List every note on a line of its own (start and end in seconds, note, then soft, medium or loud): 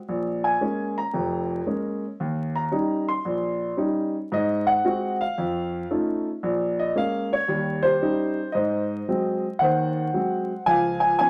0.09 0.54 A#1 medium
0.44 0.93 G#5 medium
0.61 0.98 G#3 medium
0.61 0.98 A#3 soft
0.61 0.98 C#4 medium
0.98 1.63 A#5 medium
1.14 1.60 F1 medium
1.14 1.60 F2 medium
1.66 2.04 G#3 medium
1.66 2.04 A#3 soft
1.66 2.04 C#4 medium
2.20 2.66 D#2 medium
2.55 3.04 A#5 medium
2.72 3.09 G3 medium
2.72 3.09 C#4 medium
2.72 3.09 D#4 medium
3.09 3.75 C6 medium
3.25 3.71 A#1 medium
3.77 4.15 G3 medium
3.77 4.15 C#4 soft
3.77 4.15 D#4 medium
4.32 4.77 G#2 medium
4.32 4.67 D#5 medium
4.67 5.16 F#5 loud
4.84 5.21 G#3 medium
4.84 5.21 C4 medium
4.84 5.22 F#4 medium
5.21 5.87 F5 loud
5.38 5.83 F2 medium
5.91 6.27 A3 medium
5.91 6.27 C#4 soft
5.91 6.27 D#4 soft
5.91 6.27 F4 medium
6.43 6.89 A#1 medium
6.80 6.96 D#5 medium
6.95 7.33 G#3 medium
6.95 7.33 A#3 medium
6.95 7.33 C#4 medium
6.95 7.31 F5 loud
7.33 7.81 C#5 loud
7.48 7.94 D#2 medium
7.48 7.94 G3 medium
7.83 8.51 G4 medium
7.83 8.54 C5 medium
8.01 8.39 G3 medium
8.01 8.39 C#4 medium
8.01 8.39 D#4 medium
8.52 9.01 G#2 medium
8.52 9.57 C5 medium
8.52 9.63 D#5 medium
9.08 9.45 F#3 medium
9.08 9.45 G#3 soft
9.08 9.45 C4 medium
9.59 10.07 D#2 medium
9.59 10.07 D#3 medium
9.59 10.64 C5 medium
9.59 10.62 F#5 medium
10.13 10.51 F#3 soft
10.13 10.51 G#3 soft
10.13 10.51 C4 medium
10.66 11.13 C#2 medium
10.66 11.13 F3 medium
10.66 11.30 F5 medium
10.66 10.99 G#5 loud
11.00 11.17 G#5 medium
11.19 11.30 F3 medium
11.19 11.30 B3 soft
11.19 11.30 C#4 medium
11.19 11.30 G#5 loud